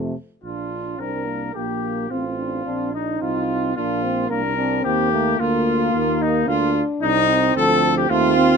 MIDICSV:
0, 0, Header, 1, 6, 480
1, 0, Start_track
1, 0, Key_signature, -2, "major"
1, 0, Tempo, 559701
1, 378, Time_signature, 3, 2, 24, 8
1, 2763, Tempo, 542005
1, 7501, End_track
2, 0, Start_track
2, 0, Title_t, "Flugelhorn"
2, 0, Program_c, 0, 56
2, 376, Note_on_c, 0, 65, 55
2, 827, Note_off_c, 0, 65, 0
2, 861, Note_on_c, 0, 70, 54
2, 1333, Note_on_c, 0, 67, 65
2, 1346, Note_off_c, 0, 70, 0
2, 1801, Note_on_c, 0, 65, 55
2, 1813, Note_off_c, 0, 67, 0
2, 2522, Note_on_c, 0, 63, 54
2, 2535, Note_off_c, 0, 65, 0
2, 2745, Note_off_c, 0, 63, 0
2, 2751, Note_on_c, 0, 65, 73
2, 3232, Note_off_c, 0, 65, 0
2, 3244, Note_on_c, 0, 65, 74
2, 3710, Note_off_c, 0, 65, 0
2, 3715, Note_on_c, 0, 70, 78
2, 4190, Note_off_c, 0, 70, 0
2, 4198, Note_on_c, 0, 67, 87
2, 4677, Note_off_c, 0, 67, 0
2, 4683, Note_on_c, 0, 65, 77
2, 5392, Note_off_c, 0, 65, 0
2, 5407, Note_on_c, 0, 63, 85
2, 5648, Note_on_c, 0, 65, 86
2, 5661, Note_off_c, 0, 63, 0
2, 5958, Note_off_c, 0, 65, 0
2, 6125, Note_on_c, 0, 63, 99
2, 6570, Note_off_c, 0, 63, 0
2, 6600, Note_on_c, 0, 69, 102
2, 6956, Note_off_c, 0, 69, 0
2, 6963, Note_on_c, 0, 67, 81
2, 7077, Note_off_c, 0, 67, 0
2, 7082, Note_on_c, 0, 65, 113
2, 7501, Note_off_c, 0, 65, 0
2, 7501, End_track
3, 0, Start_track
3, 0, Title_t, "Trumpet"
3, 0, Program_c, 1, 56
3, 375, Note_on_c, 1, 65, 69
3, 855, Note_on_c, 1, 70, 70
3, 868, Note_off_c, 1, 65, 0
3, 1316, Note_off_c, 1, 70, 0
3, 1321, Note_on_c, 1, 67, 67
3, 1804, Note_on_c, 1, 65, 70
3, 1817, Note_off_c, 1, 67, 0
3, 2522, Note_off_c, 1, 65, 0
3, 2525, Note_on_c, 1, 63, 69
3, 2755, Note_off_c, 1, 63, 0
3, 2760, Note_on_c, 1, 65, 77
3, 3237, Note_off_c, 1, 65, 0
3, 3243, Note_on_c, 1, 65, 86
3, 3713, Note_off_c, 1, 65, 0
3, 3719, Note_on_c, 1, 70, 91
3, 4192, Note_off_c, 1, 70, 0
3, 4202, Note_on_c, 1, 67, 96
3, 4690, Note_on_c, 1, 65, 96
3, 4704, Note_off_c, 1, 67, 0
3, 5415, Note_on_c, 1, 63, 91
3, 5429, Note_off_c, 1, 65, 0
3, 5641, Note_off_c, 1, 63, 0
3, 5646, Note_on_c, 1, 65, 98
3, 5951, Note_off_c, 1, 65, 0
3, 6129, Note_on_c, 1, 63, 118
3, 6572, Note_off_c, 1, 63, 0
3, 6610, Note_on_c, 1, 69, 120
3, 6961, Note_off_c, 1, 69, 0
3, 6968, Note_on_c, 1, 67, 105
3, 7081, Note_on_c, 1, 65, 113
3, 7094, Note_off_c, 1, 67, 0
3, 7501, Note_off_c, 1, 65, 0
3, 7501, End_track
4, 0, Start_track
4, 0, Title_t, "French horn"
4, 0, Program_c, 2, 60
4, 0, Note_on_c, 2, 57, 70
4, 128, Note_off_c, 2, 57, 0
4, 859, Note_on_c, 2, 62, 58
4, 1300, Note_off_c, 2, 62, 0
4, 1328, Note_on_c, 2, 58, 59
4, 1798, Note_off_c, 2, 58, 0
4, 1804, Note_on_c, 2, 60, 55
4, 1913, Note_off_c, 2, 60, 0
4, 2040, Note_on_c, 2, 62, 51
4, 2269, Note_off_c, 2, 62, 0
4, 2274, Note_on_c, 2, 60, 66
4, 2511, Note_off_c, 2, 60, 0
4, 2516, Note_on_c, 2, 62, 58
4, 2758, Note_on_c, 2, 60, 67
4, 2771, Note_off_c, 2, 62, 0
4, 3244, Note_on_c, 2, 58, 66
4, 3258, Note_off_c, 2, 60, 0
4, 3725, Note_on_c, 2, 62, 73
4, 3738, Note_off_c, 2, 58, 0
4, 3954, Note_off_c, 2, 62, 0
4, 3960, Note_on_c, 2, 60, 70
4, 4206, Note_on_c, 2, 58, 79
4, 4219, Note_off_c, 2, 60, 0
4, 4448, Note_on_c, 2, 57, 69
4, 4461, Note_off_c, 2, 58, 0
4, 4687, Note_on_c, 2, 58, 85
4, 4700, Note_off_c, 2, 57, 0
4, 5640, Note_on_c, 2, 62, 107
4, 5654, Note_off_c, 2, 58, 0
4, 6358, Note_off_c, 2, 62, 0
4, 6599, Note_on_c, 2, 53, 91
4, 7048, Note_off_c, 2, 53, 0
4, 7080, Note_on_c, 2, 57, 91
4, 7309, Note_off_c, 2, 57, 0
4, 7314, Note_on_c, 2, 60, 90
4, 7501, Note_off_c, 2, 60, 0
4, 7501, End_track
5, 0, Start_track
5, 0, Title_t, "Trombone"
5, 0, Program_c, 3, 57
5, 0, Note_on_c, 3, 48, 61
5, 128, Note_off_c, 3, 48, 0
5, 378, Note_on_c, 3, 62, 39
5, 856, Note_on_c, 3, 60, 43
5, 868, Note_off_c, 3, 62, 0
5, 1088, Note_on_c, 3, 58, 45
5, 1100, Note_off_c, 3, 60, 0
5, 1322, Note_off_c, 3, 58, 0
5, 1327, Note_on_c, 3, 58, 45
5, 1800, Note_on_c, 3, 60, 41
5, 1813, Note_off_c, 3, 58, 0
5, 2273, Note_off_c, 3, 60, 0
5, 2279, Note_on_c, 3, 62, 54
5, 2521, Note_on_c, 3, 63, 54
5, 2534, Note_off_c, 3, 62, 0
5, 3232, Note_off_c, 3, 63, 0
5, 3238, Note_on_c, 3, 62, 54
5, 3480, Note_on_c, 3, 60, 62
5, 3494, Note_off_c, 3, 62, 0
5, 3707, Note_off_c, 3, 60, 0
5, 3712, Note_on_c, 3, 58, 60
5, 3822, Note_off_c, 3, 58, 0
5, 3961, Note_on_c, 3, 62, 65
5, 4200, Note_on_c, 3, 60, 65
5, 4214, Note_off_c, 3, 62, 0
5, 4442, Note_off_c, 3, 60, 0
5, 4447, Note_on_c, 3, 58, 71
5, 4683, Note_off_c, 3, 58, 0
5, 4688, Note_on_c, 3, 58, 57
5, 5161, Note_off_c, 3, 58, 0
5, 5169, Note_on_c, 3, 58, 69
5, 5869, Note_off_c, 3, 58, 0
5, 6121, Note_on_c, 3, 60, 76
5, 7047, Note_off_c, 3, 60, 0
5, 7082, Note_on_c, 3, 60, 80
5, 7501, Note_off_c, 3, 60, 0
5, 7501, End_track
6, 0, Start_track
6, 0, Title_t, "Tuba"
6, 0, Program_c, 4, 58
6, 0, Note_on_c, 4, 41, 78
6, 104, Note_off_c, 4, 41, 0
6, 375, Note_on_c, 4, 34, 48
6, 826, Note_off_c, 4, 34, 0
6, 854, Note_on_c, 4, 36, 48
6, 1322, Note_off_c, 4, 36, 0
6, 1331, Note_on_c, 4, 34, 54
6, 1799, Note_off_c, 4, 34, 0
6, 1809, Note_on_c, 4, 33, 58
6, 2274, Note_off_c, 4, 33, 0
6, 2279, Note_on_c, 4, 34, 51
6, 2748, Note_off_c, 4, 34, 0
6, 2756, Note_on_c, 4, 36, 58
6, 3235, Note_off_c, 4, 36, 0
6, 3245, Note_on_c, 4, 34, 67
6, 3713, Note_off_c, 4, 34, 0
6, 3722, Note_on_c, 4, 36, 59
6, 4193, Note_off_c, 4, 36, 0
6, 4201, Note_on_c, 4, 39, 70
6, 4678, Note_off_c, 4, 39, 0
6, 4688, Note_on_c, 4, 38, 77
6, 5162, Note_off_c, 4, 38, 0
6, 5167, Note_on_c, 4, 39, 81
6, 5636, Note_off_c, 4, 39, 0
6, 5642, Note_on_c, 4, 38, 87
6, 5949, Note_off_c, 4, 38, 0
6, 6117, Note_on_c, 4, 36, 85
6, 6566, Note_off_c, 4, 36, 0
6, 6598, Note_on_c, 4, 38, 86
6, 7072, Note_off_c, 4, 38, 0
6, 7077, Note_on_c, 4, 39, 98
6, 7501, Note_off_c, 4, 39, 0
6, 7501, End_track
0, 0, End_of_file